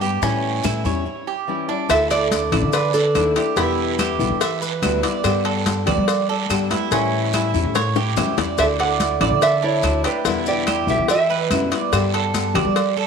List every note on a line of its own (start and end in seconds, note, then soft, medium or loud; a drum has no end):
0.00 0.20 G2 medium
0.00 0.22 G3 soft
0.00 0.22 B3 soft
0.00 0.21 G4 soft
0.00 0.22 G4 medium
0.00 high bongo soft
0.00 short guiro medium
0.00 maracas soft
0.22 0.62 A2 medium
0.22 0.63 E3 medium
0.22 0.64 G3 medium
0.22 0.63 C#4 medium
0.22 0.64 C#4 medium
0.22 0.65 E4 medium
0.22 high bongo medium
0.22 high conga soft
0.22 long guiro medium
0.22 maracas medium
0.44 high conga soft
0.63 0.84 A2 medium
0.63 0.84 E3 medium
0.63 0.85 G3 soft
0.63 0.85 C#4 medium
0.63 0.85 E4 medium
0.63 0.84 E4 medium
0.63 high bongo medium
0.63 high conga medium
0.63 short guiro medium
0.63 claves medium
0.63 maracas medium
0.85 1.05 E2 medium
0.85 1.05 G3 medium
0.85 1.05 C#4 medium
0.85 1.05 E4 medium
0.85 1.26 C#5 medium
0.85 high bongo soft
0.85 high conga soft
0.85 short guiro medium
0.85 maracas soft
1.06 muted nylon-string guitar stroke medium
1.27 1.68 G4 medium
1.47 1.68 E3 medium
1.47 1.68 G3 medium
1.47 1.68 C#4 medium
1.47 1.67 E4 medium
1.68 1.89 G3 soft
1.68 1.89 C#4 soft
1.68 1.89 D4 medium
1.68 1.89 E4 soft
1.89 2.49 D2 medium
1.89 2.30 D3 medium
1.89 2.31 A3 medium
1.89 2.31 D4 medium
1.89 2.31 E4 medium
1.89 2.09 A4 medium
1.89 2.11 E5 loud
1.89 cowbell loud
1.89 high conga soft
1.89 long guiro medium
1.89 claves medium
1.89 maracas medium
2.10 2.69 A4 medium
2.10 2.51 D5 medium
2.10 2.70 D5 loud
2.10 cowbell medium
2.10 high conga soft
2.10 maracas medium
2.31 2.52 D3 medium
2.31 2.52 A3 soft
2.31 2.52 D4 medium
2.31 2.51 E4 medium
2.31 cowbell medium
2.31 high conga medium
2.31 short guiro medium
2.31 maracas medium
2.52 2.62 A1 medium
2.52 2.73 A3 medium
2.52 2.73 D4 medium
2.52 2.72 E4 medium
2.52 2.93 D5 medium
2.52 cowbell medium
2.52 high conga soft
2.52 low conga medium
2.52 short guiro medium
2.52 claves medium
2.52 maracas soft
2.62 3.12 D3 loud
2.73 2.93 D4 medium
2.73 2.95 B4 loud
2.73 muted nylon-string guitar stroke medium
2.73 cowbell loud
2.73 long guiro medium
2.73 maracas medium
2.94 3.33 D4 medium
2.94 3.33 A4 medium
2.94 3.35 D5 medium
2.94 high conga soft
2.94 maracas medium
3.15 3.35 D#2 loud
3.15 3.35 D3 medium
3.15 3.36 A3 medium
3.15 3.36 D4 medium
3.15 3.35 E4 medium
3.15 cowbell medium
3.15 high conga soft
3.15 short guiro medium
3.15 claves medium
3.15 maracas medium
3.36 3.57 A3 soft
3.36 3.57 D4 soft
3.36 3.56 E4 medium
3.36 3.56 G4 medium
3.36 cowbell medium
3.36 short guiro medium
3.36 maracas soft
3.56 4.16 E2 medium
3.56 3.98 B2 medium
3.56 3.98 D3 medium
3.56 3.99 G3 medium
3.56 4.79 B3 medium
3.56 3.99 B3 medium
3.56 3.98 E4 medium
3.56 3.99 E4 medium
3.56 4.79 G4 medium
3.56 cowbell loud
3.56 high conga soft
3.56 long guiro medium
3.56 maracas medium
3.78 high conga soft
3.99 4.19 D3 medium
3.99 4.19 G3 medium
3.99 4.19 B3 medium
3.99 4.18 E4 medium
3.99 4.39 G4 medium
3.99 cowbell medium
3.99 high conga loud
3.99 short guiro medium
3.99 claves medium
3.99 maracas medium
4.19 4.29 B1 medium
4.19 4.40 D3 medium
4.19 4.40 G3 medium
4.19 4.40 B3 medium
4.19 4.40 E4 medium
4.19 high conga soft
4.19 short guiro medium
4.19 maracas soft
4.30 4.80 E3 loud
4.41 4.61 E5 medium
4.41 muted nylon-string guitar stroke medium
4.41 cowbell loud
4.41 high conga soft
4.41 long guiro medium
4.41 maracas medium
4.62 5.02 B4 medium
4.62 high conga soft
4.62 maracas medium
4.82 5.02 D2 loud
4.82 5.02 B2 medium
4.82 5.03 D3 medium
4.82 5.03 G3 medium
4.82 5.03 B3 medium
4.82 5.02 E4 medium
4.82 cowbell medium
4.82 high conga medium
4.82 short guiro medium
4.82 claves medium
4.82 maracas medium
5.03 5.23 G3 soft
5.03 5.24 B3 soft
5.03 5.23 E4 medium
5.03 5.44 D5 medium
5.03 cowbell medium
5.03 high conga soft
5.03 short guiro medium
5.03 maracas soft
5.24 5.84 G2 medium
5.24 5.65 D3 medium
5.24 5.65 G3 medium
5.24 5.66 B3 medium
5.24 5.66 G4 medium
5.24 cowbell loud
5.24 high conga soft
5.24 long guiro medium
5.24 claves medium
5.24 maracas medium
5.45 5.86 A4 medium
5.45 cowbell medium
5.45 high conga soft
5.66 5.86 D3 medium
5.66 5.86 G3 medium
5.66 5.86 B3 medium
5.66 5.85 G4 medium
5.66 cowbell medium
5.66 high conga loud
5.66 short guiro medium
5.66 maracas medium
5.86 5.97 D2 medium
5.86 6.07 G3 medium
5.86 6.07 B3 medium
5.86 6.07 G4 medium
5.86 6.27 D5 medium
5.86 cowbell medium
5.86 high conga soft
5.86 low conga medium
5.86 short guiro medium
5.86 claves medium
5.86 maracas soft
5.97 6.47 G3 loud
6.08 muted nylon-string guitar stroke medium
6.08 cowbell loud
6.08 high conga soft
6.08 long guiro medium
6.08 maracas medium
6.29 6.70 A4 medium
6.29 high conga soft
6.49 6.70 G2 loud
6.49 6.69 D3 medium
6.49 6.70 G3 medium
6.49 6.70 B3 medium
6.49 6.70 G4 medium
6.49 cowbell medium
6.49 high conga soft
6.49 short guiro medium
6.49 claves medium
6.49 maracas medium
6.70 6.91 G3 soft
6.70 6.91 B3 soft
6.70 6.91 E4 medium
6.70 6.91 G4 soft
6.70 cowbell medium
6.70 high conga medium
6.70 short guiro medium
6.70 maracas soft
6.91 7.51 A2 medium
6.91 7.32 E3 medium
6.91 7.32 G3 medium
6.91 7.32 C#4 medium
6.91 7.33 C#4 medium
6.91 7.33 E4 medium
6.91 cowbell loud
6.91 high conga soft
6.91 long guiro medium
6.91 maracas medium
7.13 high conga soft
7.33 7.53 E3 soft
7.33 7.53 G3 medium
7.33 7.54 C#4 medium
7.33 7.74 E4 medium
7.33 7.53 E4 medium
7.33 cowbell medium
7.33 high conga medium
7.33 short guiro medium
7.33 claves medium
7.33 maracas medium
7.54 7.64 E2 medium
7.54 7.75 G3 medium
7.54 7.75 C#4 medium
7.54 7.74 E4 medium
7.54 high conga soft
7.54 short guiro medium
7.54 maracas soft
7.64 8.14 A2 loud
7.75 7.95 C#5 medium
7.75 muted nylon-string guitar stroke medium
7.75 cowbell loud
7.75 high bongo medium
7.75 high conga soft
7.75 long guiro medium
7.75 maracas medium
7.95 8.36 G4 medium
7.95 high bongo loud
7.95 high conga soft
7.95 maracas medium
8.16 8.35 F#2 medium
8.16 8.37 E3 medium
8.16 8.37 G3 medium
8.16 8.37 C#4 medium
8.16 8.36 E4 medium
8.16 cowbell medium
8.16 low bongo medium
8.16 high conga medium
8.16 short guiro medium
8.16 claves medium
8.16 maracas medium
8.37 8.56 E2 medium
8.37 8.59 G3 soft
8.37 8.58 C#4 soft
8.37 8.58 E4 soft
8.37 8.78 D5 medium
8.37 cowbell medium
8.37 low bongo loud
8.37 short guiro medium
8.37 maracas soft
8.58 9.18 D2 medium
8.58 8.99 D3 medium
8.58 9.00 A3 medium
8.58 9.00 D4 medium
8.58 9.00 E4 medium
8.58 8.65 A4 medium
8.58 8.65 E5 loud
8.58 cowbell loud
8.58 high conga soft
8.58 long guiro medium
8.58 claves medium
8.58 maracas medium
8.79 9.39 A4 medium
8.79 9.20 D5 medium
8.79 9.39 F#5 loud
8.79 cowbell medium
8.79 high conga soft
9.00 9.20 D3 soft
9.00 9.21 A3 soft
9.00 9.21 D4 medium
9.00 9.20 E4 medium
9.00 cowbell medium
9.00 high conga medium
9.00 short guiro medium
9.00 maracas medium
9.20 9.30 A1 medium
9.20 9.42 A3 medium
9.20 9.42 D4 medium
9.20 9.41 E4 medium
9.20 9.62 D5 medium
9.20 cowbell medium
9.20 high conga soft
9.20 low conga medium
9.20 short guiro medium
9.20 claves medium
9.20 maracas soft
9.31 9.81 D3 loud
9.42 9.62 A4 medium
9.42 9.64 E5 loud
9.42 muted nylon-string guitar stroke medium
9.42 cowbell loud
9.42 high conga soft
9.42 long guiro medium
9.42 maracas medium
9.63 10.03 D4 medium
9.63 10.02 E4 medium
9.63 10.06 C#5 medium
9.63 high conga soft
9.83 10.03 D2 medium
9.83 10.03 D3 medium
9.83 10.04 A3 medium
9.83 10.04 D4 medium
9.83 10.03 E4 medium
9.83 cowbell medium
9.83 high conga soft
9.83 short guiro medium
9.83 claves medium
9.83 maracas medium
10.04 10.26 A3 soft
10.04 10.44 D4 medium
10.04 10.25 D4 soft
10.04 10.24 E4 soft
10.04 10.25 G4 medium
10.04 10.48 B4 medium
10.04 cowbell medium
10.04 short guiro medium
10.04 maracas soft
10.25 10.84 E2 medium
10.25 10.66 B2 medium
10.25 10.66 D3 medium
10.25 10.67 G3 medium
10.25 10.67 B3 medium
10.25 10.66 E4 medium
10.25 10.67 E4 medium
10.25 cowbell loud
10.25 high conga soft
10.25 long guiro medium
10.25 maracas medium
10.46 10.86 G4 medium
10.46 10.90 D5 loud
10.46 high conga soft
10.46 maracas medium
10.67 10.87 D3 medium
10.67 10.88 G3 medium
10.67 10.88 B3 medium
10.67 10.87 E4 medium
10.67 11.08 G4 medium
10.67 cowbell medium
10.67 high conga medium
10.67 short guiro medium
10.67 claves medium
10.67 maracas medium
10.87 10.97 B1 medium
10.87 11.08 D3 medium
10.87 11.08 G3 medium
10.87 11.08 B3 medium
10.87 11.08 E4 medium
10.87 11.08 G4 medium
10.87 11.10 E5 medium
10.87 high conga soft
10.87 short guiro medium
10.87 maracas soft
10.98 11.48 E3 loud
11.08 11.68 G4 medium
11.08 11.29 E5 medium
11.08 11.69 E5 medium
11.08 muted nylon-string guitar stroke medium
11.08 cowbell loud
11.08 high conga soft
11.08 long guiro medium
11.08 maracas medium
11.30 11.70 B4 medium
11.30 high conga soft
11.50 11.70 F#2 medium
11.50 11.71 B2 medium
11.50 11.71 D3 medium
11.50 11.71 G3 medium
11.50 11.71 B3 medium
11.50 11.70 E4 medium
11.50 cowbell medium
11.50 high conga medium
11.50 short guiro medium
11.50 claves medium
11.50 maracas medium
11.71 11.92 G3 soft
11.71 11.92 B3 soft
11.71 11.91 E4 medium
11.71 12.12 D5 medium
11.71 cowbell medium
11.71 high conga soft
11.71 short guiro medium
11.71 maracas soft
11.92 12.52 G2 loud
11.92 12.32 D3 medium
11.92 12.34 G3 medium
11.92 12.34 B3 medium
11.92 12.34 G4 medium
11.92 cowbell loud
11.92 high conga soft
11.92 long guiro medium
11.92 claves medium
11.92 maracas medium
12.14 12.54 A4 medium
12.14 cowbell medium
12.14 high conga soft
12.34 12.54 D3 medium
12.34 12.54 G3 medium
12.34 12.55 B3 medium
12.34 12.54 G4 medium
12.34 cowbell medium
12.34 high conga medium
12.34 short guiro medium
12.34 maracas medium
12.54 12.64 D2 medium
12.54 12.76 G3 medium
12.54 12.76 B3 medium
12.54 12.75 G4 medium
12.54 12.96 D5 medium
12.54 cowbell medium
12.54 high conga soft
12.54 low conga medium
12.54 short guiro medium
12.54 claves medium
12.54 maracas soft
12.65 13.07 G3 loud
12.76 muted nylon-string guitar stroke medium
12.76 cowbell loud
12.76 high conga soft
12.76 long guiro medium
12.76 maracas medium
12.97 13.07 A4 medium
12.97 high conga soft